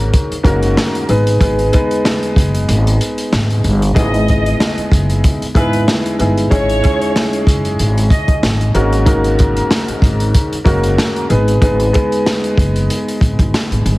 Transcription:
Already playing: upright piano G#2 A#3 C#4 D#4 F#4 A#4
0.14 kick, closed hi-hat
0.31 muted upright bass stroke, closed hi-hat
0.43 upright bass F#1, upright piano G#2 A#3 C#4 D#4 F#4 A#4, kick, closed hi-hat
0.63 closed hi-hat
0.77 snare
0.95 closed hi-hat
1.08 upright bass G#1, upright piano G#3 B3 D#4 G#4 B4, closed hi-hat
1.27 closed hi-hat
1.40 upright bass G#1, upright piano G#3 B3 D#4 G#4 B4, kick, closed hi-hat
1.59 closed hi-hat
1.72 upright piano G#3 B3 D#4 G#4 B4, kick, closed hi-hat
1.91 closed hi-hat
2.05 snare
2.23 closed hi-hat
2.36 upright bass F#1, kick, closed hi-hat
2.55 closed hi-hat
2.68 upright bass G#1, closed hi-hat
2.87 closed hi-hat
3.01 closed hi-hat
3.18 closed hi-hat
3.32 upright bass G#1, snare
3.50 closed hi-hat
3.64 upright bass G1, closed hi-hat
3.82 closed hi-hat
3.95 upright bass G#1, upright piano G#3 B3 D#4 E4 G#4, violin section D#5, kick, closed hi-hat
4.14 closed hi-hat
4.28 kick, closed hi-hat
4.46 closed hi-hat
4.60 snare
4.78 muted upright bass stroke, closed hi-hat
4.92 upright bass F#1, kick, closed hi-hat
5.10 closed hi-hat
5.24 kick, closed hi-hat
5.41 muted upright bass stroke, closed hi-hat
5.55 upright bass G#1, upright piano G#3 B3 D#4 E4 G#4, violin section B4, kick, closed hi-hat
5.73 closed hi-hat
5.88 snare
6.06 closed hi-hat
6.19 upright bass G1, upright piano G#3 B3 D#4 E4 G#4, closed hi-hat
6.38 closed hi-hat
6.50 upright bass G#1, upright piano G#3 C#4 D#4 E4 G#4, violin section C#5, kick, closed hi-hat
6.69 closed hi-hat
6.82 upright piano G#3 C#4 D#4 E4 G#4, kick, closed hi-hat
7.02 closed hi-hat
7.16 snare
7.33 closed hi-hat
7.47 upright bass F#1, kick, closed hi-hat
7.65 closed hi-hat
7.79 upright bass G#1, closed hi-hat
7.98 closed hi-hat
8.10 violin section D#5, kick, closed hi-hat
8.28 kick, closed hi-hat
8.43 upright bass G#1, snare
8.61 closed hi-hat
8.74 upright bass G#1, upright piano G#2 A#3 C#4 D#4 F#4 A#4, closed hi-hat
8.93 closed hi-hat
9.05 upright piano G#2 A#3 C#4 D#4 F#4 A#4, kick, closed hi-hat
9.24 closed hi-hat
9.39 kick, closed hi-hat
9.57 closed hi-hat
9.71 snare
9.88 muted upright bass stroke, closed hi-hat
10.02 upright bass G#1, kick, closed hi-hat
10.20 closed hi-hat
10.34 kick, closed hi-hat
10.52 muted upright bass stroke, closed hi-hat
10.64 upright bass F#1, upright piano G#2 A#3 C#4 D#4 F#4 A#4, kick, closed hi-hat
10.84 closed hi-hat
10.98 snare
11.16 closed hi-hat
11.29 upright bass G#1, upright piano G#3 B3 D#4 G#4 B4, closed hi-hat
11.48 closed hi-hat
11.61 upright bass G#1, upright piano G#3 B3 D#4 G#4 B4, kick, closed hi-hat
11.80 closed hi-hat
11.93 upright piano G#3 B3 D#4 G#4 B4, kick, closed hi-hat
12.12 closed hi-hat
12.26 snare
12.44 closed hi-hat
12.57 upright bass F#1, kick, closed hi-hat
12.76 closed hi-hat
12.90 closed hi-hat
13.08 closed hi-hat
13.21 upright bass G#1, kick, closed hi-hat
13.39 upright bass G#1, kick, closed hi-hat
13.54 snare
13.71 upright bass G#1, closed hi-hat
13.85 upright bass G1, closed hi-hat

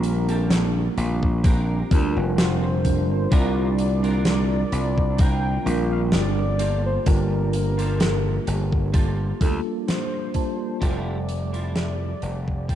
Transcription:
Already playing: slap bass A#1, ambient pad D3 A#3 C4 G4, tine electric piano G3 A#3 C4 D4 F4, soft synth lead A#4
0.03 closed hi-hat
0.28 clean electric guitar C4 D4 G4 A4, closed hi-hat
0.51 snare, closed hi-hat
0.97 slap bass A#1, closed hi-hat
1.23 kick
1.44 clean electric guitar C4 D4 G4 A#4, kick, closed hi-hat
1.90 slap bass D2, tine electric piano G3 C4 D4 F4 A#4, kick, closed hi-hat
2.17 slap bass F1
2.38 soft synth lead C5, snare, closed hi-hat
2.63 muted clean electric guitar stroke
2.84 tine electric piano G3 C4 D4 F4 A#4, muted clean electric guitar stroke, kick, closed hi-hat
3.10 slap bass G1
3.31 slap bass C2, tine electric piano G3 C4 D4 F4 A#4, clean electric guitar C4 D4 F4 A#4, ambient pad F4, soft synth lead D5, kick, closed hi-hat
3.79 closed hi-hat
4.03 clean electric guitar C4 D4 F4 A#4, closed hi-hat
4.25 snare, closed hi-hat
4.72 slap bass C2, closed hi-hat
4.98 kick
5.18 clean electric guitar C4 D4 F4 A#4, soft synth lead G5, kick, closed hi-hat
5.65 slap bass A#1, tine electric piano G3 C4 D4 F4 A#4, closed hi-hat
5.92 soft synth lead F5
6.12 slap bass G1, soft synth lead D5, snare, closed hi-hat
6.37 muted clean electric guitar stroke
6.59 ambient pad F3 A#3 G4, clean electric guitar A#3 F4 G4 A4, closed hi-hat
6.86 soft synth lead C5
7.05 slap bass G1, tine electric piano G3 A#3 D4 F4 G4, soft synth lead A#4, kick, closed hi-hat
7.53 closed hi-hat
7.78 clean electric guitar A#3 F4 G4 A4, closed hi-hat
8.00 snare, closed hi-hat
8.47 slap bass G1, closed hi-hat
8.72 kick
8.93 clean electric guitar A#3 F4 G4 A4, kick, closed hi-hat
9.40 slap bass D2, tine electric piano G3 A#3 D4 F4 A4, kick, closed hi-hat
9.87 soft synth lead C5, snare, closed hi-hat
10.12 muted clean electric guitar stroke
10.34 tine electric piano G3 A#3 D4 F4 A5, muted clean electric guitar stroke, kick, closed hi-hat
10.80 slap bass F1, tine electric piano F3 G3 C4 A4 E5, ambient pad A3 E5, clean electric guitar E4 F4 G4 A4, soft synth lead D5, kick, closed hi-hat
11.29 closed hi-hat
11.53 clean electric guitar E4 F4 G4 A4, closed hi-hat
11.76 snare, closed hi-hat
12.22 slap bass F1, closed hi-hat
12.48 kick
12.68 clean electric guitar E4 F4 G4 A4, soft synth lead G5, kick, closed hi-hat

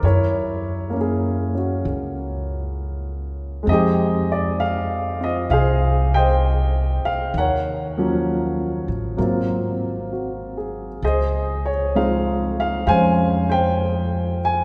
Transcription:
0.03 upright bass F#2, grand piano E4 A#4 C#5
0.90 grand piano A#3 C#4
0.98 grand piano E4 G#4
1.55 grand piano C#4 F#4
1.85 upright bass C#2
3.63 grand piano G#3 C4
3.67 upright bass F2, grand piano D#4 D#5
3.72 grand piano G4 G#4 G5
4.32 grand piano D5
4.60 grand piano F5
5.20 grand piano C4 F4 D#5
5.50 upright bass C2, grand piano G#4 C5 F5
6.14 grand piano C5 D#5 G5
7.05 grand piano F5, muted upright bass stroke
7.34 upright bass D#2, grand piano F#5
7.39 grand piano A#4 C#5
7.98 grand piano F3 F#3 A#3 C#4
8.88 upright bass A1
9.17 upright bass G#1, grand piano F#3 A#3 C4 F4
10.13 grand piano F#4
10.57 grand piano G#4
11.02 upright bass C#2, grand piano G#4 C5 D#5
11.66 grand piano C#5
11.95 grand piano F3 G#3 C4 D#4 F5
12.60 grand piano F5
12.87 upright bass F2, grand piano G#3 C5 F5 G#5
12.91 grand piano C#4
13.49 grand piano C5 G5
14.45 grand piano G#5

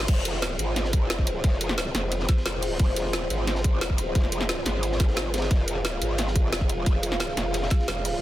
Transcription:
0.08 wobble bass F1, analog synth pad F4 G#4 C5, kick, closed hi-hat, crash, ride
0.25 closed hi-hat, ride
0.42 snare, closed hi-hat, ride
0.59 wobble bass G#1, closed hi-hat, ride
0.76 snare, closed hi-hat, ride
0.85 snare
0.93 kick, closed hi-hat, ride
1.10 wobble bass F1, snare, closed hi-hat, ride
1.18 kick, ride
1.27 closed hi-hat, ride
1.44 wobble bass F1, kick, closed hi-hat, ride
1.61 closed hi-hat, ride
1.69 snare
1.78 snare, closed hi-hat, ride
1.87 snare
1.95 wobble bass F1, snare, closed hi-hat, ride
2.12 closed hi-hat, ride
2.20 snare
2.29 kick, snare, closed hi-hat, ride
2.37 snare
2.46 wobble bass F1, snare, closed hi-hat, ride
2.62 closed hi-hat, open hi-hat
2.79 wobble bass F1, kick, closed hi-hat, ride
2.96 closed hi-hat, ride
3.13 snare, closed hi-hat, ride
3.30 wobble bass G#1, closed hi-hat, ride
3.47 snare, closed hi-hat, ride
3.55 snare
3.64 kick, closed hi-hat, ride
3.81 wobble bass F1, snare, closed hi-hat, ride
3.90 kick, ride
3.98 closed hi-hat, ride
4.15 wobble bass F1, kick, closed hi-hat, ride
4.24 snare
4.32 closed hi-hat, ride
4.41 snare
4.49 snare, closed hi-hat, ride
4.58 snare
4.65 wobble bass G#1, snare, closed hi-hat, ride
4.83 closed hi-hat, ride
4.92 snare
5.00 kick, snare, closed hi-hat, ride
5.07 snare
5.16 snare, closed hi-hat, ride
5.34 snare, closed hi-hat, ride
5.38 snare, ride
5.42 snare, ride
5.51 wobble bass F1, analog synth pad F5, kick, closed hi-hat, ride
5.68 closed hi-hat, ride
5.85 snare, closed hi-hat, ride
6.01 wobble bass G#1, closed hi-hat, ride
6.18 snare, closed hi-hat, ride
6.27 snare
6.36 kick, closed hi-hat, ride
6.52 wobble bass F1, snare, closed hi-hat, ride
6.61 kick, ride
6.69 closed hi-hat, ride
6.86 wobble bass F1, kick, closed hi-hat, ride
7.03 closed hi-hat, ride
7.12 snare
7.20 snare, closed hi-hat, ride
7.29 snare
7.37 wobble bass F1, snare, closed hi-hat, ride
7.54 closed hi-hat, ride
7.62 snare
7.70 kick, snare, closed hi-hat, ride
7.79 snare
7.88 wobble bass F1, snare, closed hi-hat, ride
8.05 closed hi-hat, open hi-hat

